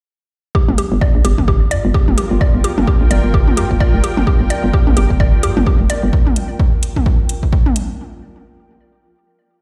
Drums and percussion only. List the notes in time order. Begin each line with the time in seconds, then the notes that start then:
0.55 kick
0.69 high tom
0.78 closed hi-hat
1.01 kick
1.25 closed hi-hat
1.38 kick, high tom
1.48 kick
1.71 closed hi-hat
1.94 kick
2.08 high tom
2.18 closed hi-hat
2.41 kick
2.64 closed hi-hat
2.78 high tom
2.87 kick
3.11 closed hi-hat
3.34 kick
3.48 high tom
3.57 closed hi-hat
3.71 kick
3.80 kick
4.04 closed hi-hat
4.17 high tom
4.27 kick
4.50 closed hi-hat
4.73 kick
4.87 high tom
4.97 closed hi-hat
5.10 kick
5.20 kick
5.43 closed hi-hat
5.57 high tom
5.66 kick
5.90 closed hi-hat
6.13 kick
6.27 high tom
6.36 closed hi-hat
6.60 kick
6.83 closed hi-hat
6.96 kick, high tom
7.06 kick
7.29 closed hi-hat
7.43 kick
7.53 kick
7.66 high tom
7.76 closed hi-hat